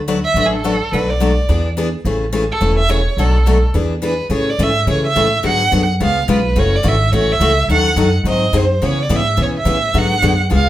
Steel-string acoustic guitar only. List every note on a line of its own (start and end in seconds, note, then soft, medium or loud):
0.08 0.18 D3 medium
0.08 0.18 F#3 medium
0.08 0.18 A3 medium
0.08 0.18 D4 medium
0.08 0.18 F#4 medium
0.08 0.18 B4 medium
0.36 0.55 D3 medium
0.36 0.55 F#3 medium
0.36 0.55 A3 medium
0.36 0.55 D4 medium
0.36 0.55 F#4 medium
0.36 0.55 B4 medium
0.64 0.74 D3 medium
0.64 0.75 F#3 medium
0.64 0.75 A3 medium
0.64 0.75 D4 medium
0.64 0.75 F#4 medium
0.64 0.75 B4 medium
0.93 1.11 B2 medium
0.93 1.12 F#3 medium
0.93 1.11 A3 medium
0.93 1.12 D4 medium
0.93 1.12 F#4 medium
1.20 1.31 B2 medium
1.20 1.31 F#3 medium
1.20 1.31 A3 medium
1.20 1.31 D4 medium
1.20 1.31 F#4 medium
1.49 1.67 E3 medium
1.49 1.67 B3 medium
1.49 1.68 D4 medium
1.49 1.68 G#4 medium
1.77 1.87 E3 medium
1.77 1.87 B3 medium
1.77 1.88 D4 medium
1.77 1.88 G#4 medium
2.05 2.24 C#3 medium
2.05 2.24 E3 medium
2.05 2.24 A3 medium
2.05 2.24 C#4 medium
2.05 2.24 G#4 medium
2.33 2.43 C#3 medium
2.33 2.43 E3 medium
2.33 2.43 A3 medium
2.33 2.43 C#4 medium
2.33 2.44 G#4 medium
2.61 2.80 C#3 medium
2.61 2.80 E3 medium
2.61 2.80 A3 medium
2.61 2.80 C#4 medium
2.61 2.80 G#4 medium
2.89 2.99 C#3 medium
2.89 3.00 E3 medium
2.89 3.00 A3 medium
2.89 3.00 C#4 medium
2.89 3.00 G#4 medium
3.18 3.37 B2 medium
3.18 3.37 F#3 medium
3.18 3.37 A3 medium
3.18 3.37 D4 medium
3.18 3.37 F#4 medium
3.46 3.56 B2 medium
3.46 3.57 F#3 medium
3.46 3.57 A3 medium
3.46 3.57 D4 medium
3.46 3.57 F#4 medium
3.74 3.93 E3 medium
3.74 3.93 B3 medium
3.74 3.93 D4 medium
3.74 3.94 G#4 medium
4.02 4.13 E3 medium
4.02 4.13 B3 medium
4.02 4.13 D4 medium
4.02 4.13 G#4 medium
4.30 4.49 C#3 medium
4.30 4.49 E3 medium
4.30 4.49 A3 medium
4.30 4.49 C#4 medium
4.30 4.50 G#4 medium
4.59 4.69 C#3 medium
4.59 4.69 E3 medium
4.59 4.70 A3 medium
4.59 4.70 C#4 medium
4.59 4.70 G#4 medium
4.87 5.06 C#3 medium
4.87 5.06 E3 medium
4.87 5.06 A3 medium
4.87 5.06 C#4 medium
4.87 5.06 G#4 medium
5.15 5.26 C#3 medium
5.15 5.26 E3 medium
5.15 5.26 A3 medium
5.15 5.26 C#4 medium
5.15 5.26 G#4 loud
5.43 5.62 D3 medium
5.43 5.62 F#3 medium
5.43 5.62 B3 medium
5.43 5.62 F#4 medium
5.43 5.62 G#4 medium
5.72 5.82 D3 medium
5.72 5.82 F#3 medium
5.72 5.82 B3 medium
5.72 5.83 F#4 medium
5.72 5.83 G#4 medium
6.00 6.19 C#3 medium
6.00 6.19 G#3 medium
6.00 6.19 B3 medium
6.00 6.19 F4 medium
6.00 6.19 G#4 medium
6.28 6.38 C#3 medium
6.28 6.39 G#3 medium
6.28 6.39 B3 medium
6.28 6.39 F4 medium
6.28 6.39 G#4 medium
6.56 6.75 C#3 medium
6.56 6.75 E3 medium
6.56 6.75 A3 medium
6.56 6.75 C#4 medium
6.56 6.75 F#4 medium
6.83 6.94 C#3 medium
6.83 6.94 E3 medium
6.83 6.95 A3 medium
6.83 6.95 C#4 loud
6.83 6.95 F#4 loud
7.13 7.31 C#3 medium
7.13 7.32 E3 medium
7.13 7.32 A3 medium
7.13 7.32 C#4 medium
7.13 7.32 F#4 medium
7.41 7.51 C#3 medium
7.41 7.51 E3 medium
7.41 7.51 A3 medium
7.41 7.51 C#4 medium
7.41 7.52 F#4 loud
7.70 7.88 D#3 medium
7.70 7.88 F#3 medium
7.70 7.88 C#4 medium
7.70 7.88 D#4 medium
7.70 7.89 A4 medium
7.96 8.07 D#3 medium
7.96 8.08 F#3 medium
7.96 8.08 C#4 medium
7.96 8.08 D#4 medium
7.96 8.08 A4 medium
8.25 8.44 D#3 medium
8.25 8.44 F#3 medium
8.25 8.45 C4 medium
8.25 8.44 D#4 medium
8.25 8.45 G#4 medium
8.53 8.64 D#3 medium
8.53 8.64 F#3 medium
8.53 8.64 C4 medium
8.53 8.64 D#4 medium
8.53 8.64 G#4 medium
8.82 9.01 C#3 medium
8.82 9.00 E3 medium
8.82 9.01 B3 medium
8.82 9.01 C#4 medium
8.82 9.01 G#4 medium
9.09 9.20 C#3 medium
9.09 9.20 E3 medium
9.09 9.20 B3 medium
9.09 9.21 C#4 medium
9.09 9.21 G#4 medium
9.36 9.56 C#3 medium
9.36 9.56 E3 medium
9.36 9.56 B3 medium
9.36 9.57 C#4 medium
9.36 9.57 G#4 medium
9.65 9.76 C#3 medium
9.65 9.76 E3 medium
9.65 9.77 B3 medium
9.65 9.77 C#4 medium
9.65 9.77 G#4 medium
9.94 10.13 D3 medium
9.94 10.13 F#3 medium
9.94 10.13 B3 medium
9.94 10.13 F#4 medium
9.94 10.13 G#4 medium
10.22 10.33 D3 medium
10.22 10.33 F#3 medium
10.22 10.33 B3 medium
10.22 10.33 F#4 medium
10.22 10.33 G#4 medium
10.50 10.69 C#3 medium
10.50 10.69 G#3 medium
10.50 10.69 B3 medium
10.50 10.69 F4 medium
10.50 10.69 G#4 medium